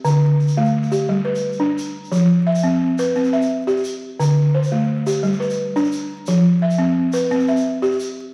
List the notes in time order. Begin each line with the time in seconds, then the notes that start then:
0.05 D3, shaker
0.40 shaker
0.48 shaker
0.57 A3
0.65 shaker
0.83 shaker
0.92 G4, shaker
1.09 G3
1.25 B4
1.35 shaker
1.52 shaker
1.60 D4
1.78 shaker
2.05 shaker
2.12 F3, shaker
2.47 E5
2.55 shaker
2.63 C4
2.98 B4, shaker
3.15 C4, shaker
3.24 shaker
3.33 E5, shaker
3.42 shaker
3.67 G4, shaker
3.77 shaker
3.84 shaker
4.20 D3, shaker
4.54 C5
4.63 shaker
4.72 A3
5.07 G4, shaker
5.23 G3, shaker
5.33 shaker
5.40 B4, shaker
5.50 shaker
5.76 D4, shaker
5.84 shaker
5.92 shaker
6.27 F3, shaker
6.62 E5
6.71 shaker
6.78 C4
7.13 B4, shaker
7.30 C4, shaker
7.40 shaker
7.48 E5, shaker
7.57 shaker
7.82 G4, shaker
7.91 shaker
8.00 shaker